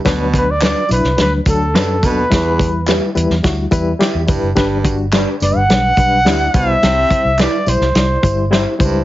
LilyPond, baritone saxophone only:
\new Staff \with { instrumentName = "Baritone saxophone" } { \clef bass \time 4/4 \key c \lydian \tempo 4 = 106 b,8. r2 r8. b,8 | e,8. r2 r8. g,8 | g,8. r2 r8. b,8 | c8. r2 r8. g,8 | }